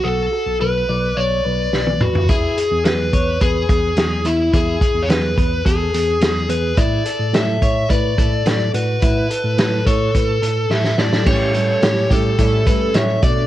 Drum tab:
CC |----------------|----------------|----------------|----------------|
HH |----------------|x-x-x-x-x-x-x-x-|x-x-x-x-x-x-x-x-|x-x-x-x-x-x-x-x-|
SD |------------o---|----o-------o---|----o-------o---|----o-------o---|
T1 |-------------o--|----------------|----------------|----------------|
T2 |--------------o-|----------------|----------------|----------------|
FT |---------------o|----------------|----------------|----------------|
BD |----------------|o-----o-o-o-----|o-o---o-o-------|o-----o-o-o-----|

CC |----------------|x---------------|
HH |x-x-x-x-x-x-----|--x-x-x-x-x-x-x-|
SD |----o-------oooo|----o-------o---|
T1 |----------------|----------------|
T2 |----------------|----------------|
FT |----------------|----------------|
BD |o-----o-o-------|o-----o-o-o---o-|